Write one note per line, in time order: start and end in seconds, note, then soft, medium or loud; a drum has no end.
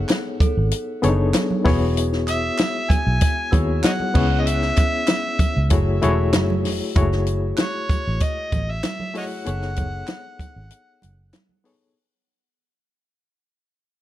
0.00 0.26 B3 medium
0.00 0.26 D#4 medium
0.00 0.27 G#4 medium
0.00 0.27 A4 medium
0.00 0.27 C#5 medium
0.09 snare loud
0.09 clap medium
0.09 closed hi-hat medium
0.09 high conga medium
0.40 1.93 A4 medium
0.40 muted fingered electric bass stroke soft
0.40 kick loud
0.40 closed hi-hat medium
0.40 muted conga medium
0.57 0.71 G#1 loud
0.71 closed hi-hat loud
1.02 1.32 F#1 medium
1.02 1.62 B3 loud
1.02 1.09 D4 medium
1.02 1.63 G#4 medium
1.02 1.63 A4 medium
1.02 1.63 C#5 loud
1.02 closed hi-hat medium
1.02 muted conga medium
1.02 low conga medium
1.09 1.66 D#4 medium
1.34 snare loud
1.34 clap medium
1.34 closed hi-hat loud
1.34 high conga medium
1.51 high conga medium
1.64 2.49 E1 medium
1.64 2.65 B3 loud
1.64 2.65 E4 loud
1.64 2.65 F#4 medium
1.64 2.65 G#4 medium
1.64 2.66 C#5 loud
1.64 kick loud
1.64 snare soft
1.64 open hi-hat medium
1.97 closed hi-hat medium
2.13 snare soft
2.27 2.94 E5 loud
2.27 4.14 D#6 medium
2.27 clap medium
2.27 closed hi-hat medium
2.58 snare loud
2.58 clap medium
2.58 closed hi-hat medium
2.58 high conga medium
2.90 3.54 G#5 loud
2.90 muted fingered electric bass stroke soft
2.90 kick loud
2.90 closed hi-hat medium
2.90 muted conga medium
3.07 3.20 B1 medium
3.21 kick loud
3.21 closed hi-hat loud
3.51 3.81 D#2 medium
3.51 4.12 B3 medium
3.51 4.12 E4 medium
3.51 4.12 F#4 medium
3.51 4.13 G#4 medium
3.51 4.13 C#5 medium
3.51 4.41 E6 medium
3.51 kick medium
3.51 closed hi-hat medium
3.51 muted conga medium
3.84 3.92 C#5 medium
3.84 3.91 D#5 medium
3.84 4.42 F#5 loud
3.84 snare loud
3.84 clap loud
3.84 closed hi-hat loud
3.84 high conga medium
4.00 high conga medium
4.14 4.71 C#2 loud
4.14 5.14 B3 medium
4.14 5.15 C#4 medium
4.14 5.15 E4 medium
4.14 5.15 G#4 medium
4.14 5.16 C#5 loud
4.14 kick loud
4.14 crash medium
4.41 4.49 D#5 medium
4.47 5.72 E5 loud
4.47 closed hi-hat medium
4.62 snare soft
4.77 kick loud
4.77 clap medium
4.77 closed hi-hat medium
4.77 muted conga soft
5.07 snare loud
5.07 clap medium
5.07 closed hi-hat medium
5.07 high conga medium
5.39 muted fingered electric bass stroke medium
5.39 kick loud
5.39 closed hi-hat medium
5.39 muted conga soft
5.57 5.70 C#2 medium
5.70 5.99 F#1 loud
5.70 5.96 A3 medium
5.70 5.96 E4 medium
5.70 5.96 F#4 medium
5.70 5.97 G#4 medium
5.70 5.97 C#5 loud
5.70 kick loud
5.70 closed hi-hat loud
6.02 6.35 E1 medium
6.02 6.62 A3 loud
6.02 6.62 E4 medium
6.02 6.62 F#4 medium
6.02 6.62 G#4 medium
6.02 6.62 C#5 loud
6.02 closed hi-hat medium
6.02 muted conga medium
6.02 low conga medium
6.33 6.66 F#1 medium
6.33 snare loud
6.33 clap medium
6.33 closed hi-hat loud
6.33 high conga medium
6.50 high conga medium
6.65 6.80 F1 medium
6.65 snare soft
6.65 open hi-hat medium
6.95 7.52 F#1 loud
6.95 7.02 G#3 medium
6.95 7.75 E4 medium
6.95 7.76 F#4 medium
6.95 7.76 G#4 medium
6.95 7.76 C#5 loud
6.95 kick loud
6.95 closed hi-hat medium
7.02 7.78 A3 medium
7.12 snare soft
7.27 closed hi-hat medium
7.57 8.25 C#5 medium
7.57 9.45 F#6 medium
7.57 snare loud
7.57 clap medium
7.57 closed hi-hat medium
7.57 high conga medium
7.89 muted fingered electric bass stroke soft
7.89 kick medium
7.89 closed hi-hat medium
7.89 muted conga soft
8.07 8.20 A1 medium
8.20 8.72 D#5 loud
8.20 kick loud
8.20 closed hi-hat loud
8.52 8.80 A1 medium
8.52 kick medium
8.52 closed hi-hat medium
8.52 muted conga medium
8.52 low conga medium
8.71 9.16 E5 medium
8.83 snare loud
8.83 clap medium
8.83 closed hi-hat loud
8.83 high conga medium
9.00 high conga medium
9.14 9.34 A3 medium
9.14 9.34 E4 medium
9.14 9.35 F#4 medium
9.14 9.35 G#4 medium
9.14 9.35 C#5 medium
9.14 9.26 C#5 medium
9.14 9.24 D#5 medium
9.14 11.31 F#5 loud
9.14 open hi-hat medium
9.45 10.02 F#1 loud
9.45 10.25 B3 medium
9.45 10.25 D#4 medium
9.45 10.25 G#4 medium
9.45 10.26 A4 medium
9.45 10.26 C#5 medium
9.45 closed hi-hat medium
9.62 snare soft
9.76 kick medium
9.76 closed hi-hat medium
9.76 muted conga soft
10.07 snare loud
10.07 clap medium
10.07 closed hi-hat medium
10.07 high conga medium
10.39 muted fingered electric bass stroke soft
10.39 kick medium
10.39 closed hi-hat medium
10.39 muted conga soft
10.56 10.70 G#1 medium
10.71 closed hi-hat loud
11.02 11.31 F#1 medium
11.02 closed hi-hat medium
11.02 muted conga medium
11.33 snare loud
11.33 clap medium
11.33 closed hi-hat loud
11.33 high conga medium
11.49 high conga medium
11.64 11.84 B3 medium
11.64 11.84 D#4 medium
11.64 11.85 G#4 medium
11.64 11.85 A4 medium
11.64 11.85 C#5 loud
11.64 open hi-hat medium